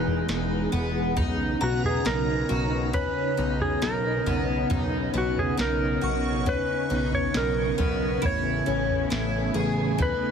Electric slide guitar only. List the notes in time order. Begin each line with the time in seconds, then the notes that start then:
Already playing: B4
1.63 F#4
1.86 G#4
2.07 A#4
2.94 B4
3.62 G#4
3.83 A#4
5.18 F#4
5.39 G#4
5.61 A#4
6.49 B4
7.15 C#5
7.37 A#4
8.26 C#5
10.02 B4